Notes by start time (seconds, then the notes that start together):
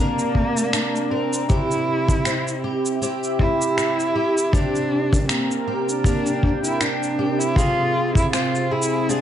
Already playing: C3 A#3 C4 A#4 D5
0.00 D4 A#4
0.19 shaker
0.35 kick
0.57 shaker
0.73 D4, finger snap, shaker
0.96 shaker
1.10 C4 A#4
1.33 shaker
1.48 C3 E4 G4, kick, shaker
1.71 shaker
2.08 G4, kick, shaker
2.25 C4, finger snap, shaker
2.48 shaker
2.54 E5
2.64 G4
2.86 shaker
3.02 C4 E4 G4, shaker
3.24 shaker
3.39 E4, kick
3.62 shaker
3.77 E4, finger snap, shaker
4.00 shaker
4.15 G4
4.38 shaker
4.52 C3 D4 G4, kick, shaker
4.75 shaker
4.84 A#4
4.97 C4
5.13 kick, shaker
5.28 A#3 C4, finger snap, shaker
5.51 shaker
5.68 G4
5.87 D4 G5, shaker
6.04 A#3 D4 G4, kick, shaker
6.26 shaker
6.43 kick
6.64 E4, shaker
6.81 D4, finger snap, shaker
7.03 shaker
7.19 G4
7.39 E4, shaker
7.55 C3 F4 G#4, kick, shaker
8.15 E4, kick, shaker
8.33 C4 F4, finger snap, shaker
8.55 shaker
8.60 G#4
8.69 E4 G#4 G#5
8.82 shaker
9.09 C4 D4 F4 G#4, shaker